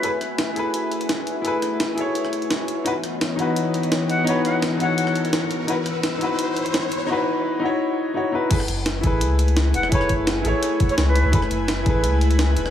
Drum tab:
CC |----------------|----------------|----------------|----------------|
HH |x-x-x-x-x-xxx-x-|x-x-x-x-x-xxx-x-|x-x-x-x-x-xxx-x-|x-x-x-x-x-xxx-x-|
SD |--r-o-------o---|--r-o----r--o---|--r-o-------o---|--r-o----r--o---|
BD |----------------|----------------|----------------|----------------|

CC |----------------|----------------|x---------------|----------------|
HH |x-x-x-x-x-xxx-x-|----------------|x-x-x-x-x-xxx-x-|x-x-x-x-x-xxx-x-|
SD |--r-o-------o---|----------------|-r--o-------o--r|-r--o---r---o---|
BD |----------------|----------------|o-----o---------|o-o-------o-----|

CC |----------------|
HH |x-x-x-x-x-xxx-x-|
SD |-r--o-------o--r|
BD |o-----o---------|